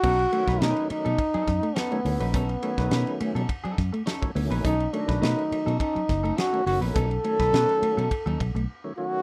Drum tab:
CC |x---------------|----------------|----------------|----------------|
RD |-bbbbbbbbbbbbbbb|bbbbbbbbbbbbbbbb|bbbbbbbbbbbbbbbb|bbbbbbbbbbbb----|
HH |--------------o-|p-------------o-|p-------------o-|p---------------|
SD |---oo-----o-o---|---oo-----o-o---|---oo-----o-o---|---oo-----------|
BD |o--o----o-o-----|o--o----o-o--o--|o--o----o-o-----|o--o----o-o-----|